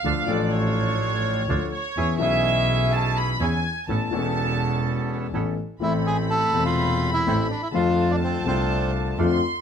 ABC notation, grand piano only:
X:1
M:4/4
L:1/8
Q:1/4=125
K:A
V:1 name="Grand piano"
[D,,D,=F,A,DA] [A,,,A,,F,A,DA]4- [A,,,A,,F,A,DA] [D,,D,F,A,DA] z | [E,,E,B,CG] [B,,,B,,E,B,CG]4- [B,,,B,,E,B,CG] [E,,E,B,CG] z | [A,,,A,,E,B,CA] [E,,,E,,E,B,CA]4- [E,,,E,,E,B,CA] [A,,,A,,E,B,CA] z | [K:Am] [A,,,A,,E,A,CA]3 [E,,,E,,C,A,CA]3 [A,,,A,,E,A,CA] z |
[F,,D,F,A,CF]3 [C,,C,D,A,CF]3 [F,,D,F,A,CF] z |]